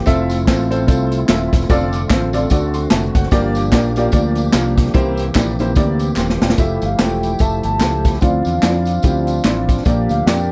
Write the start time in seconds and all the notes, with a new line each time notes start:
Already playing: C4
0.06 F1 A3 C4 E4 F4 A4 E5, kick, closed hi-hat, tambourine
0.29 closed hi-hat, tambourine
0.47 A1 C4 F4 A4 C5, kick, snare, clap, closed hi-hat, tambourine
0.70 C4 F4 A4 C5, closed hi-hat, tambourine
0.87 C2 C4 F4 A4 C5, kick, closed hi-hat, tambourine
1.12 closed hi-hat, tambourine
1.28 D#1 C4 F4 A4 E5, snare, clap, closed hi-hat, tambourine
1.53 E1, kick, snare, closed hi-hat, tambourine
1.61 snare
1.69 F1 D3 C4 F4 A4 D5, kick, closed hi-hat, tambourine
1.93 closed hi-hat, tambourine
2.09 A1 C4 F4 A4 C5, kick, snare, clap, closed hi-hat, tambourine
2.33 C4 F4 A4 D5, closed hi-hat, tambourine
2.50 D2 D3 C4 F#4 A4 D5, kick, closed hi-hat, tambourine
2.74 F#5 C6, closed hi-hat, tambourine
2.90 F1 E5 A5, snare, clap, closed hi-hat, tambourine
3.15 F#1 C5 F#5, kick, closed hi-hat, tambourine
3.23 snare
3.31 G1 G2 F3 A#3 D4 F4 G4 D5, kick, closed hi-hat, tambourine
3.55 closed hi-hat, tambourine
3.72 A#1 A#3 F4 G4 D5, kick, snare, clap, closed hi-hat, tambourine
3.96 A#3 F4 G4 D5, closed hi-hat, tambourine
4.12 D2 A#3 F4 G4 D5, kick, closed hi-hat, tambourine
4.35 closed hi-hat, tambourine
4.52 C2 A#3 F4 G4 F5, snare, clap, closed hi-hat, tambourine
4.78 kick, snare, closed hi-hat, tambourine
4.86 snare
4.94 C2 C3 E3 A#3 C4 E4 G4 C5, kick, closed hi-hat, tambourine
5.17 closed hi-hat, tambourine
5.35 A#1 A#3 E4 G4 D5, kick, snare, clap, closed hi-hat, tambourine
5.59 A#3 E4 G4 C5, closed hi-hat, tambourine
5.75 D2 A#3 E4 G4 D5, kick, closed hi-hat, tambourine
5.99 closed hi-hat, tambourine
6.16 D#1 G5 C6, snare, clap, tambourine
6.30 snare
6.41 E1 D5 G5, snare, tambourine
6.50 snare
6.57 F1 F3 A3 E4 F4 G4 E5, kick, closed hi-hat, tambourine
6.82 G1 F5, closed hi-hat, tambourine
6.99 E1 A3 F4 G4 C5 G5, snare, clap, closed hi-hat, tambourine
7.23 closed hi-hat, tambourine
7.39 F1 A3 F4 G4 E5 A5, kick, closed hi-hat, tambourine
7.63 G1 A5, closed hi-hat, tambourine
7.80 C#2 A3 F4 G4 C5, snare, clap, closed hi-hat, tambourine
8.05 kick, snare, closed hi-hat, tambourine
8.13 snare
8.21 D2 D3 F3 C4 D4 E4 F4 D5 F5, kick, closed hi-hat, tambourine
8.45 E2, closed hi-hat, tambourine
8.63 F2 C4 E4 F4 D5, snare, clap, closed hi-hat, tambourine
8.85 closed hi-hat, tambourine
9.03 D2 C4 E4 F4 G4, kick, closed hi-hat, tambourine
9.27 closed hi-hat, tambourine
9.44 A1 C4 E4 F4 D5, snare, clap, closed hi-hat, tambourine
9.69 kick, closed hi-hat, tambourine
9.77 snare
9.85 A#1 A#2 F3 A#3 F4 G4 D5, kick, closed hi-hat, tambourine
10.09 D2 F5, closed hi-hat, tambourine
10.26 F2 A#3 F4 G4 D5 G5, snare, clap, closed hi-hat, tambourine